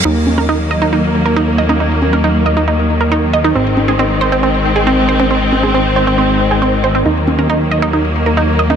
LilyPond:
<<
  \new Staff \with { instrumentName = "Synth arpeggio sound" } { \time 4/4 \key ees \dorian \tempo 4 = 137 ees'16 r8 bes'16 ees'16 r16 ees''16 ees'16 ees'16 r8 bes'16 ees'16 r16 ees''16 ees'16 | ees'16 r8 bes'16 ees'16 r16 ees''16 ees'16 ees'16 r8 bes'16 ees'16 r16 ees''16 ees'16 | c'16 r8 aes'16 c'16 r16 c''16 c'16 c'16 r8 aes'16 c'16 r16 c''16 c'16 | c'16 r8 aes'16 c'16 r16 c''16 c'16 c'16 r8 aes'16 c'16 r16 c''16 c'16 |
ees'16 r8 bes'16 ees'16 r16 ees''16 ees'16 ees'16 r8 bes'16 ees'16 r16 ees''16 ees'16 | }
  \new Staff \with { instrumentName = "String section" } { \clef bass \time 4/4 \key ees \dorian << { <ges bes>1~ | <ges bes>1 | <aes c'>1~ | <aes c'>1 |
<ges bes>1 | } \\ { ees1~ | ees1~ | ees1~ | ees1~ |
ees1 | } >> }
  \new Staff \with { instrumentName = "Analog synth bass" } { \clef bass \time 4/4 \key ees \dorian ees,1~ | ees,1 | aes,,1~ | aes,,1 |
ees,1 | }
  \new DrumStaff \with { instrumentName = "Drums" } \drummode { \time 4/4 r8 cgho16 cgho16 r4 r4 r8. cgho16 | r8 cgho16 cgho16 r4 r4 r4 | r8 cgho16 cgho16 r4 r4 r8. cgho16 | r8 cgho16 cgho16 r4 r4 r4 |
r8 cgho16 cgho16 r4 r4 r8. cgho16 | }
>>